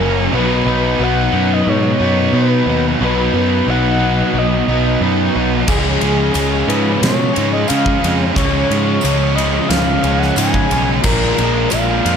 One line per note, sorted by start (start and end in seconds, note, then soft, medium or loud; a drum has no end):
0.00 0.27 F#1 medium
0.00 0.33 F#2 medium
0.00 0.31 C#3 medium
0.00 0.32 C#3 medium
0.00 0.33 F#3 medium
0.00 0.32 A#3 medium
0.00 0.35 C#4 medium
0.00 0.18 A#4 loud
0.32 0.61 B1 medium
0.32 1.35 B2 loud
0.32 0.99 B2 loud
0.32 1.33 F#3 loud
0.32 0.68 F#3 loud
0.32 0.67 B3 loud
0.32 1.32 B3 loud
0.32 0.66 D#4 loud
0.32 1.04 B4 loud
0.66 0.94 B1 medium
0.66 1.00 F#3 medium
0.66 1.01 B3 medium
0.66 1.02 D#4 medium
0.99 1.27 B1 medium
0.99 2.32 B2 medium
0.99 2.00 F#3 medium
0.99 1.99 B3 medium
0.99 1.98 D#4 medium
0.99 1.55 F#5 loud
1.32 1.61 F#2 medium
1.32 2.99 B2 medium
1.32 2.98 F#3 medium
1.32 2.98 B3 medium
1.53 1.71 D#5 loud
1.67 1.94 G#2 loud
1.67 2.37 C#5 loud
1.99 2.28 F#2 medium
1.99 2.33 F#3 medium
1.99 2.34 B3 medium
1.99 2.35 D#4 medium
2.33 2.61 B2 loud
2.33 2.99 B2 medium
2.33 2.69 F#3 medium
2.33 2.67 B3 medium
2.33 2.66 D#4 medium
2.33 2.85 B4 loud
2.66 2.94 D#2 medium
2.66 3.01 F#3 medium
2.66 3.01 B3 medium
2.66 3.02 D#4 medium
3.01 3.28 B1 medium
3.01 3.99 B2 medium
3.01 3.67 B2 loud
3.01 3.35 F#3 loud
3.01 4.00 F#3 loud
3.01 3.34 B3 loud
3.01 3.98 B3 loud
3.01 3.32 D#4 loud
3.01 3.71 B4 loud
3.33 3.61 F#2 medium
3.33 3.68 F#3 medium
3.33 3.68 B3 medium
3.33 3.69 D#4 medium
3.67 4.22 B1 medium
3.67 5.00 B2 medium
3.67 4.70 F#3 medium
3.67 4.68 B3 medium
3.67 4.67 D#4 medium
3.67 4.40 F#5 loud
3.99 5.66 B2 medium
3.99 5.66 F#3 medium
3.99 5.65 B3 medium
4.34 4.61 B1 medium
4.38 5.03 D#5 medium
4.68 4.95 B1 medium
4.68 5.01 F#3 medium
4.68 5.02 B3 medium
4.68 5.02 D#4 medium
5.01 5.28 F#2 medium
5.01 5.66 B2 medium
5.01 5.36 F#3 medium
5.01 5.35 B3 medium
5.01 5.33 D#4 medium
5.35 5.62 B1 medium
5.35 5.67 F#3 soft
5.35 5.66 B3 medium
5.35 5.66 D#4 medium
5.67 5.95 C#2 loud
5.67 6.34 C#3 medium
5.67 6.71 C#3 medium
5.67 6.02 F3 loud
5.67 6.01 G#3 medium
5.67 6.69 G#3 loud
5.67 5.99 C#4 loud
5.67 6.68 C#4 loud
5.67 6.70 G#4 loud
5.67 kick loud
5.67 crash medium
6.00 6.29 C#2 medium
6.00 6.34 F3 medium
6.00 6.35 G#3 medium
6.00 6.36 C#4 medium
6.00 ride medium
6.34 6.62 C#2 medium
6.34 7.66 C#3 medium
6.34 7.37 F3 medium
6.34 7.35 G#3 medium
6.34 7.33 C#4 medium
6.34 ride medium
6.34 tambourine medium
6.68 6.95 G#2 loud
6.68 8.33 C#3 medium
6.68 8.36 G#3 medium
6.68 8.33 C#4 medium
6.68 7.02 B4 medium
6.68 ride medium
7.01 7.29 B2 medium
7.01 7.54 C#5 loud
7.01 snare loud
7.01 ride loud
7.34 7.64 G#2 medium
7.34 7.68 F3 medium
7.34 7.69 G#3 medium
7.34 7.69 C#4 medium
7.34 ride medium
7.53 7.69 D#5 loud
7.67 8.34 C#3 medium
7.67 7.97 C#3 medium
7.67 8.04 F3 medium
7.67 8.03 G#3 medium
7.67 8.01 C#4 medium
7.67 8.18 F5 loud
7.67 ride medium
7.67 tambourine medium
7.86 kick medium
8.02 8.30 F2 medium
8.02 8.36 F3 medium
8.02 8.37 G#3 medium
8.02 8.37 C#4 medium
8.02 ride medium
8.35 8.63 C#2 medium
8.35 9.33 C#3 loud
8.35 9.02 C#3 loud
8.35 8.71 F3 medium
8.35 9.37 G#3 loud
8.35 8.70 G#3 loud
8.35 8.67 C#4 loud
8.35 9.34 C#4 loud
8.35 9.37 C#5 loud
8.35 kick medium
8.35 ride loud
8.68 8.97 G#2 medium
8.68 9.04 F3 medium
8.68 9.05 G#3 medium
8.68 9.04 C#4 medium
8.68 ride medium
9.01 9.58 C#2 medium
9.01 10.34 C#3 medium
9.01 10.05 F3 medium
9.01 10.04 G#3 medium
9.01 ride medium
9.01 tambourine medium
9.05 10.01 C#4 medium
9.36 11.03 C#3 medium
9.36 11.05 G#3 medium
9.36 11.01 C#4 medium
9.36 9.70 D#5 medium
9.36 ride medium
9.69 9.97 C#2 loud
9.69 10.20 F5 loud
9.69 snare loud
9.69 ride loud
10.03 10.31 C#2 medium
10.03 10.37 F3 medium
10.03 10.38 G#3 medium
10.03 10.37 C#4 medium
10.03 ride medium
10.19 10.39 F#5 loud
10.19 snare soft
10.36 10.64 G#2 medium
10.36 11.01 C#3 medium
10.36 10.72 F3 medium
10.36 10.71 G#3 medium
10.36 10.68 C#4 medium
10.36 10.87 G#5 loud
10.36 ride medium
10.36 tambourine medium
10.54 kick medium
10.70 10.98 B1 loud
10.70 11.04 F3 medium
10.70 11.05 G#3 soft
10.70 11.01 C#4 medium
10.70 ride medium
11.03 11.31 A#1 medium
11.03 12.07 A#2 medium
11.03 11.70 A#2 medium
11.03 11.40 F3 medium
11.03 12.05 F3 loud
11.03 11.38 G#3 loud
11.03 12.04 A#3 loud
11.03 11.36 D4 loud
11.03 11.71 A#4 loud
11.03 kick loud
11.03 crash loud
11.37 11.66 A#1 medium
11.37 11.71 F3 medium
11.37 11.72 G#3 medium
11.37 11.73 D4 medium
11.37 ride medium
11.70 12.00 A#1 medium
11.70 12.17 A#2 medium
11.70 12.17 F3 medium
11.70 12.17 G#3 medium
11.70 12.17 D4 medium
11.70 12.17 F5 loud
11.70 ride medium
11.70 tambourine medium
12.04 12.17 F2 medium
12.04 12.17 A#2 medium
12.04 12.17 F3 medium
12.04 12.17 A#3 medium
12.04 ride medium